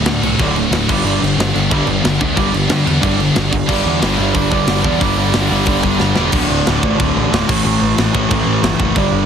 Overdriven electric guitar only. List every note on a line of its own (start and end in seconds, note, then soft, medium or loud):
0.06 0.22 D2 medium
0.06 0.22 A2 medium
0.23 0.38 D2 medium
0.23 0.39 A2 medium
0.40 0.54 D2 loud
0.40 0.55 A2 medium
0.40 0.57 D3 loud
0.56 0.71 D2 medium
0.56 0.71 A2 medium
0.72 0.87 D2 medium
0.72 0.88 A2 medium
0.89 1.03 G2 medium
0.89 1.04 D3 medium
0.89 1.04 G3 medium
1.04 1.19 G2 medium
1.04 1.20 D3 loud
1.04 1.21 G3 loud
1.20 1.35 G2 medium
1.20 1.35 D3 medium
1.37 1.53 G2 medium
1.37 1.53 D3 medium
1.54 1.68 G2 medium
1.54 1.70 D3 medium
1.70 1.85 G2 loud
1.70 1.86 D3 loud
1.70 1.87 G3 loud
1.86 2.02 G2 medium
1.86 2.02 D3 medium
2.03 2.18 G2 medium
2.03 2.19 D3 medium
2.19 2.33 G2 medium
2.19 2.35 D3 medium
2.35 2.51 G2 medium
2.35 2.51 D3 loud
2.35 2.53 G3 medium
2.52 2.66 G2 medium
2.52 2.67 D3 medium
2.68 2.83 G2 medium
2.68 2.84 D3 medium
2.84 3.00 G2 medium
2.84 3.00 D3 medium
3.01 3.16 G2 medium
3.01 3.16 D3 loud
3.01 3.19 G3 loud
3.17 3.33 G2 medium
3.17 3.34 D3 medium
3.34 3.49 G2 medium
3.34 3.49 D3 medium
3.50 3.66 G2 medium
3.50 3.67 D3 medium
3.67 3.84 G2 medium
3.67 3.83 D3 medium
3.67 3.83 G3 loud
3.83 3.99 G2 medium
3.83 3.99 D3 medium
3.83 4.00 G3 loud
4.00 4.17 G2 loud
4.00 4.16 D3 loud
4.00 4.16 G3 loud
4.16 4.33 G2 medium
4.16 4.33 D3 medium
4.16 4.34 G3 loud
4.34 4.50 G2 medium
4.34 4.50 D3 medium
4.34 4.49 G3 medium
4.50 4.66 G2 medium
4.50 4.66 D3 medium
4.50 4.67 G3 loud
4.67 4.83 G2 medium
4.67 4.82 D3 medium
4.67 4.81 G3 medium
4.83 4.98 G2 medium
4.83 4.99 D3 medium
4.83 5.00 G3 loud
5.00 5.17 G2 loud
5.00 5.16 D3 loud
5.00 5.16 G3 loud
5.17 5.32 G2 medium
5.17 5.33 D3 medium
5.17 5.33 G3 loud
5.33 5.49 G2 medium
5.33 5.49 D3 loud
5.33 5.48 G3 loud
5.49 5.64 G2 medium
5.49 5.64 D3 medium
5.49 5.65 G3 loud
5.65 5.81 G2 medium
5.65 5.80 D3 loud
5.65 5.79 G3 loud
5.81 5.96 G2 medium
5.81 5.97 D3 loud
5.81 5.97 G3 loud
5.97 6.14 G2 medium
5.97 6.13 D3 medium
5.97 6.13 G3 loud
6.14 6.31 G2 medium
6.14 6.31 D3 medium
6.14 6.31 G3 medium
6.32 6.64 D2 loud
6.32 6.65 A2 loud
6.32 6.65 D3 loud
6.65 6.81 D2 loud
6.65 6.80 A2 medium
6.65 6.79 D3 loud
6.80 6.96 D2 medium
6.80 6.96 A2 medium
6.80 6.97 D3 loud
6.97 7.29 D2 medium
6.97 7.30 A2 loud
6.97 7.30 D3 loud
7.30 7.46 D2 medium
7.30 7.46 A2 medium
7.30 7.47 D3 loud
7.47 7.64 A2 loud
7.47 7.63 E3 loud
7.47 7.62 A3 loud
7.63 7.97 A2 medium
7.63 7.96 E3 loud
7.63 7.95 A3 loud
7.96 8.11 A2 medium
7.96 8.11 E3 medium
7.96 8.12 A3 medium
8.12 8.30 A2 medium
8.12 8.29 E3 loud
8.12 8.28 A3 loud
8.30 8.62 A2 medium
8.30 8.61 E3 loud
8.30 8.60 A3 loud
8.61 8.77 A2 medium
8.61 8.78 E3 medium
8.61 8.79 A3 loud
8.79 8.94 A2 medium
8.79 8.95 E3 medium
8.79 8.95 A3 loud
8.95 9.26 G2 loud
8.95 9.26 D3 loud
8.95 9.26 G3 loud